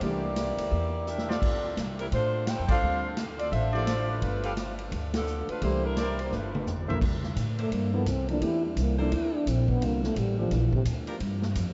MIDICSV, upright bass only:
0, 0, Header, 1, 3, 480
1, 0, Start_track
1, 0, Tempo, 349854
1, 18, Time_signature, 4, 2, 24, 8
1, 16095, End_track
2, 0, Start_track
2, 0, Title_t, "Upright bass"
2, 0, Program_c, 0, 32
2, 10, Note_on_c, 0, 36, 77
2, 738, Note_off_c, 0, 36, 0
2, 788, Note_on_c, 0, 37, 63
2, 961, Note_off_c, 0, 37, 0
2, 981, Note_on_c, 0, 40, 79
2, 1894, Note_off_c, 0, 40, 0
2, 1952, Note_on_c, 0, 38, 78
2, 2394, Note_off_c, 0, 38, 0
2, 2427, Note_on_c, 0, 36, 76
2, 2872, Note_off_c, 0, 36, 0
2, 2909, Note_on_c, 0, 45, 80
2, 3502, Note_off_c, 0, 45, 0
2, 3557, Note_on_c, 0, 41, 60
2, 3699, Note_off_c, 0, 41, 0
2, 3708, Note_on_c, 0, 37, 65
2, 3855, Note_off_c, 0, 37, 0
2, 3875, Note_on_c, 0, 38, 82
2, 4783, Note_off_c, 0, 38, 0
2, 4829, Note_on_c, 0, 33, 89
2, 5740, Note_off_c, 0, 33, 0
2, 5789, Note_on_c, 0, 31, 81
2, 6700, Note_off_c, 0, 31, 0
2, 6746, Note_on_c, 0, 38, 86
2, 7470, Note_off_c, 0, 38, 0
2, 7709, Note_on_c, 0, 36, 78
2, 8620, Note_off_c, 0, 36, 0
2, 8669, Note_on_c, 0, 31, 80
2, 9392, Note_off_c, 0, 31, 0
2, 9448, Note_on_c, 0, 35, 63
2, 9616, Note_off_c, 0, 35, 0
2, 9626, Note_on_c, 0, 36, 77
2, 10089, Note_off_c, 0, 36, 0
2, 10097, Note_on_c, 0, 45, 89
2, 10567, Note_off_c, 0, 45, 0
2, 10587, Note_on_c, 0, 43, 77
2, 11052, Note_off_c, 0, 43, 0
2, 11061, Note_on_c, 0, 36, 83
2, 11529, Note_off_c, 0, 36, 0
2, 11545, Note_on_c, 0, 40, 75
2, 12010, Note_off_c, 0, 40, 0
2, 12023, Note_on_c, 0, 36, 89
2, 12489, Note_off_c, 0, 36, 0
2, 12504, Note_on_c, 0, 38, 86
2, 12969, Note_off_c, 0, 38, 0
2, 12984, Note_on_c, 0, 34, 82
2, 13448, Note_off_c, 0, 34, 0
2, 13463, Note_on_c, 0, 36, 76
2, 13927, Note_off_c, 0, 36, 0
2, 13943, Note_on_c, 0, 33, 91
2, 14407, Note_off_c, 0, 33, 0
2, 14420, Note_on_c, 0, 34, 80
2, 14880, Note_off_c, 0, 34, 0
2, 14888, Note_on_c, 0, 38, 78
2, 15358, Note_off_c, 0, 38, 0
2, 15367, Note_on_c, 0, 43, 79
2, 15837, Note_off_c, 0, 43, 0
2, 15856, Note_on_c, 0, 41, 89
2, 16095, Note_off_c, 0, 41, 0
2, 16095, End_track
3, 0, Start_track
3, 0, Title_t, "Muted upright bass strokes"
3, 7526, Note_on_c, 9, 29, 36
3, 7663, Note_off_c, 9, 29, 0
3, 16095, End_track
0, 0, End_of_file